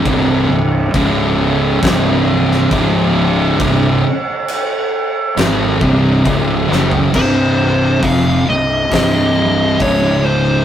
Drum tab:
CC |x---x---x---x---|x---x---x---x---|x---------------|
HH |----------------|----------------|----o---o---o---|
SD |--------o--o----|--------o-----o-|--------o-------|
FT |----------------|---------------o|----------------|
BD |o---o---o---o---|o---------o-o---|o---o---o---o---|